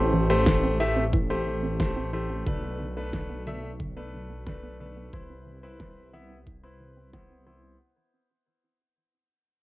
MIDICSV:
0, 0, Header, 1, 5, 480
1, 0, Start_track
1, 0, Tempo, 666667
1, 1774, Time_signature, 4, 2, 24, 8
1, 6931, End_track
2, 0, Start_track
2, 0, Title_t, "Grand piano"
2, 0, Program_c, 0, 0
2, 0, Note_on_c, 0, 57, 74
2, 0, Note_on_c, 0, 67, 66
2, 0, Note_on_c, 0, 72, 80
2, 185, Note_off_c, 0, 72, 0
2, 186, Note_off_c, 0, 57, 0
2, 186, Note_off_c, 0, 67, 0
2, 215, Note_on_c, 0, 57, 91
2, 215, Note_on_c, 0, 67, 82
2, 216, Note_on_c, 0, 72, 98
2, 546, Note_off_c, 0, 57, 0
2, 546, Note_off_c, 0, 67, 0
2, 546, Note_off_c, 0, 72, 0
2, 576, Note_on_c, 0, 57, 93
2, 576, Note_on_c, 0, 67, 88
2, 576, Note_on_c, 0, 76, 105
2, 737, Note_off_c, 0, 57, 0
2, 737, Note_off_c, 0, 67, 0
2, 737, Note_off_c, 0, 76, 0
2, 936, Note_on_c, 0, 57, 77
2, 936, Note_on_c, 0, 67, 71
2, 937, Note_on_c, 0, 72, 82
2, 1266, Note_off_c, 0, 57, 0
2, 1266, Note_off_c, 0, 67, 0
2, 1266, Note_off_c, 0, 72, 0
2, 1296, Note_on_c, 0, 57, 82
2, 1296, Note_on_c, 0, 67, 73
2, 1296, Note_on_c, 0, 72, 90
2, 1506, Note_off_c, 0, 57, 0
2, 1506, Note_off_c, 0, 67, 0
2, 1506, Note_off_c, 0, 72, 0
2, 1536, Note_on_c, 0, 57, 77
2, 1536, Note_on_c, 0, 67, 67
2, 1536, Note_on_c, 0, 72, 79
2, 1746, Note_off_c, 0, 57, 0
2, 1746, Note_off_c, 0, 67, 0
2, 1746, Note_off_c, 0, 72, 0
2, 1777, Note_on_c, 0, 62, 68
2, 1778, Note_on_c, 0, 57, 73
2, 1778, Note_on_c, 0, 71, 82
2, 2107, Note_off_c, 0, 57, 0
2, 2107, Note_off_c, 0, 62, 0
2, 2107, Note_off_c, 0, 71, 0
2, 2138, Note_on_c, 0, 57, 88
2, 2138, Note_on_c, 0, 62, 83
2, 2138, Note_on_c, 0, 71, 100
2, 2467, Note_off_c, 0, 57, 0
2, 2467, Note_off_c, 0, 62, 0
2, 2467, Note_off_c, 0, 71, 0
2, 2497, Note_on_c, 0, 57, 93
2, 2497, Note_on_c, 0, 62, 85
2, 2497, Note_on_c, 0, 76, 104
2, 2657, Note_off_c, 0, 62, 0
2, 2658, Note_off_c, 0, 57, 0
2, 2658, Note_off_c, 0, 76, 0
2, 2856, Note_on_c, 0, 62, 69
2, 2857, Note_on_c, 0, 57, 76
2, 2857, Note_on_c, 0, 71, 85
2, 3186, Note_off_c, 0, 62, 0
2, 3187, Note_off_c, 0, 57, 0
2, 3187, Note_off_c, 0, 71, 0
2, 3215, Note_on_c, 0, 57, 82
2, 3216, Note_on_c, 0, 62, 72
2, 3216, Note_on_c, 0, 71, 90
2, 3426, Note_off_c, 0, 57, 0
2, 3426, Note_off_c, 0, 62, 0
2, 3426, Note_off_c, 0, 71, 0
2, 3458, Note_on_c, 0, 57, 70
2, 3458, Note_on_c, 0, 62, 65
2, 3458, Note_on_c, 0, 71, 79
2, 3667, Note_off_c, 0, 57, 0
2, 3667, Note_off_c, 0, 62, 0
2, 3667, Note_off_c, 0, 71, 0
2, 3697, Note_on_c, 0, 64, 66
2, 3697, Note_on_c, 0, 72, 82
2, 3698, Note_on_c, 0, 71, 68
2, 4027, Note_off_c, 0, 64, 0
2, 4027, Note_off_c, 0, 71, 0
2, 4027, Note_off_c, 0, 72, 0
2, 4055, Note_on_c, 0, 72, 91
2, 4056, Note_on_c, 0, 64, 80
2, 4056, Note_on_c, 0, 71, 85
2, 4386, Note_off_c, 0, 64, 0
2, 4386, Note_off_c, 0, 71, 0
2, 4386, Note_off_c, 0, 72, 0
2, 4416, Note_on_c, 0, 59, 93
2, 4416, Note_on_c, 0, 64, 85
2, 4416, Note_on_c, 0, 76, 108
2, 4577, Note_off_c, 0, 59, 0
2, 4577, Note_off_c, 0, 64, 0
2, 4577, Note_off_c, 0, 76, 0
2, 4776, Note_on_c, 0, 64, 67
2, 4776, Note_on_c, 0, 71, 77
2, 4776, Note_on_c, 0, 72, 88
2, 5106, Note_off_c, 0, 64, 0
2, 5106, Note_off_c, 0, 71, 0
2, 5106, Note_off_c, 0, 72, 0
2, 5135, Note_on_c, 0, 59, 80
2, 5135, Note_on_c, 0, 64, 71
2, 5136, Note_on_c, 0, 72, 89
2, 5346, Note_off_c, 0, 59, 0
2, 5346, Note_off_c, 0, 64, 0
2, 5346, Note_off_c, 0, 72, 0
2, 5374, Note_on_c, 0, 59, 73
2, 5374, Note_on_c, 0, 64, 64
2, 5374, Note_on_c, 0, 72, 77
2, 5585, Note_off_c, 0, 59, 0
2, 5585, Note_off_c, 0, 64, 0
2, 5585, Note_off_c, 0, 72, 0
2, 6931, End_track
3, 0, Start_track
3, 0, Title_t, "Synth arpeggio sound"
3, 0, Program_c, 1, 84
3, 96, Note_on_c, 1, 52, 75
3, 146, Note_off_c, 1, 52, 0
3, 215, Note_on_c, 1, 60, 73
3, 265, Note_off_c, 1, 60, 0
3, 335, Note_on_c, 1, 52, 98
3, 448, Note_off_c, 1, 52, 0
3, 455, Note_on_c, 1, 60, 79
3, 539, Note_off_c, 1, 60, 0
3, 576, Note_on_c, 1, 52, 73
3, 626, Note_off_c, 1, 52, 0
3, 695, Note_on_c, 1, 60, 81
3, 745, Note_off_c, 1, 60, 0
3, 816, Note_on_c, 1, 52, 97
3, 929, Note_off_c, 1, 52, 0
3, 935, Note_on_c, 1, 60, 74
3, 1019, Note_off_c, 1, 60, 0
3, 1056, Note_on_c, 1, 52, 79
3, 1106, Note_off_c, 1, 52, 0
3, 1175, Note_on_c, 1, 60, 73
3, 1225, Note_off_c, 1, 60, 0
3, 1295, Note_on_c, 1, 52, 99
3, 1408, Note_off_c, 1, 52, 0
3, 1415, Note_on_c, 1, 60, 80
3, 1499, Note_off_c, 1, 60, 0
3, 1534, Note_on_c, 1, 52, 74
3, 1585, Note_off_c, 1, 52, 0
3, 1654, Note_on_c, 1, 60, 75
3, 1705, Note_off_c, 1, 60, 0
3, 1774, Note_on_c, 1, 50, 100
3, 1888, Note_off_c, 1, 50, 0
3, 1893, Note_on_c, 1, 59, 73
3, 1978, Note_off_c, 1, 59, 0
3, 2014, Note_on_c, 1, 50, 75
3, 2065, Note_off_c, 1, 50, 0
3, 2135, Note_on_c, 1, 59, 74
3, 2185, Note_off_c, 1, 59, 0
3, 2256, Note_on_c, 1, 50, 95
3, 2369, Note_off_c, 1, 50, 0
3, 2375, Note_on_c, 1, 59, 77
3, 2459, Note_off_c, 1, 59, 0
3, 2496, Note_on_c, 1, 50, 73
3, 2545, Note_off_c, 1, 50, 0
3, 2616, Note_on_c, 1, 59, 79
3, 2666, Note_off_c, 1, 59, 0
3, 2736, Note_on_c, 1, 50, 101
3, 2849, Note_off_c, 1, 50, 0
3, 2856, Note_on_c, 1, 59, 78
3, 2939, Note_off_c, 1, 59, 0
3, 2977, Note_on_c, 1, 50, 75
3, 3026, Note_off_c, 1, 50, 0
3, 3096, Note_on_c, 1, 59, 75
3, 3146, Note_off_c, 1, 59, 0
3, 3218, Note_on_c, 1, 50, 97
3, 3330, Note_off_c, 1, 50, 0
3, 3337, Note_on_c, 1, 59, 78
3, 3420, Note_off_c, 1, 59, 0
3, 3458, Note_on_c, 1, 50, 74
3, 3507, Note_off_c, 1, 50, 0
3, 3578, Note_on_c, 1, 59, 76
3, 3626, Note_off_c, 1, 59, 0
3, 3699, Note_on_c, 1, 52, 102
3, 3810, Note_off_c, 1, 52, 0
3, 3817, Note_on_c, 1, 60, 77
3, 3900, Note_off_c, 1, 60, 0
3, 3937, Note_on_c, 1, 52, 71
3, 3986, Note_off_c, 1, 52, 0
3, 4058, Note_on_c, 1, 60, 73
3, 4107, Note_off_c, 1, 60, 0
3, 4178, Note_on_c, 1, 52, 94
3, 4290, Note_off_c, 1, 52, 0
3, 4297, Note_on_c, 1, 60, 76
3, 4380, Note_off_c, 1, 60, 0
3, 4418, Note_on_c, 1, 52, 73
3, 4466, Note_off_c, 1, 52, 0
3, 4538, Note_on_c, 1, 60, 77
3, 4587, Note_off_c, 1, 60, 0
3, 4657, Note_on_c, 1, 52, 100
3, 4770, Note_off_c, 1, 52, 0
3, 4776, Note_on_c, 1, 60, 74
3, 4860, Note_off_c, 1, 60, 0
3, 4898, Note_on_c, 1, 52, 75
3, 4946, Note_off_c, 1, 52, 0
3, 5018, Note_on_c, 1, 60, 78
3, 5067, Note_off_c, 1, 60, 0
3, 5137, Note_on_c, 1, 52, 99
3, 5250, Note_off_c, 1, 52, 0
3, 5258, Note_on_c, 1, 60, 75
3, 5340, Note_off_c, 1, 60, 0
3, 5377, Note_on_c, 1, 52, 73
3, 5426, Note_off_c, 1, 52, 0
3, 5497, Note_on_c, 1, 60, 74
3, 5546, Note_off_c, 1, 60, 0
3, 6931, End_track
4, 0, Start_track
4, 0, Title_t, "Detuned saw bass"
4, 0, Program_c, 2, 39
4, 0, Note_on_c, 2, 33, 87
4, 1750, Note_off_c, 2, 33, 0
4, 1776, Note_on_c, 2, 35, 87
4, 3671, Note_off_c, 2, 35, 0
4, 3695, Note_on_c, 2, 36, 86
4, 5591, Note_off_c, 2, 36, 0
4, 6931, End_track
5, 0, Start_track
5, 0, Title_t, "Drums"
5, 335, Note_on_c, 9, 36, 108
5, 335, Note_on_c, 9, 38, 118
5, 407, Note_off_c, 9, 36, 0
5, 407, Note_off_c, 9, 38, 0
5, 815, Note_on_c, 9, 36, 110
5, 887, Note_off_c, 9, 36, 0
5, 1295, Note_on_c, 9, 36, 117
5, 1296, Note_on_c, 9, 38, 110
5, 1367, Note_off_c, 9, 36, 0
5, 1368, Note_off_c, 9, 38, 0
5, 1775, Note_on_c, 9, 36, 110
5, 1847, Note_off_c, 9, 36, 0
5, 2255, Note_on_c, 9, 36, 107
5, 2256, Note_on_c, 9, 38, 111
5, 2327, Note_off_c, 9, 36, 0
5, 2328, Note_off_c, 9, 38, 0
5, 2736, Note_on_c, 9, 36, 104
5, 2808, Note_off_c, 9, 36, 0
5, 3216, Note_on_c, 9, 36, 110
5, 3216, Note_on_c, 9, 38, 107
5, 3288, Note_off_c, 9, 36, 0
5, 3288, Note_off_c, 9, 38, 0
5, 3695, Note_on_c, 9, 36, 110
5, 3767, Note_off_c, 9, 36, 0
5, 4175, Note_on_c, 9, 36, 107
5, 4175, Note_on_c, 9, 38, 117
5, 4247, Note_off_c, 9, 36, 0
5, 4247, Note_off_c, 9, 38, 0
5, 4655, Note_on_c, 9, 36, 111
5, 4727, Note_off_c, 9, 36, 0
5, 5135, Note_on_c, 9, 36, 115
5, 5135, Note_on_c, 9, 38, 115
5, 5207, Note_off_c, 9, 36, 0
5, 5207, Note_off_c, 9, 38, 0
5, 6931, End_track
0, 0, End_of_file